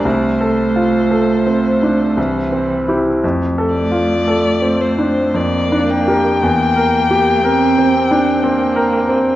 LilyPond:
<<
  \new Staff \with { instrumentName = "Violin" } { \time 3/4 \key f \major \tempo 4 = 57 c''2~ c''8 r8 | r8 d''4 c''8 d''8 g''8~ | g''2. | }
  \new Staff \with { instrumentName = "Grand piano" } { \time 3/4 \key f \major \tuplet 3/2 { c,8 a'8 f'8 a'8 c'8 d'8 c,8 c'8 <e' g'>8 } | \tuplet 3/2 { f,8 a'8 f'8 a'8 c'8 d'8 f,8 d'8 <g' bes'>8 } | \tuplet 3/2 { e,8 bes'8 g'8 bes'8 c'8 d'8 c'8 bes'8 c'8 } | }
  \new Staff \with { instrumentName = "Cello" } { \time 3/4 \key f \major a2 e4 | a2 bes4 | bes4 c'8 c'8 bes4 | }
>>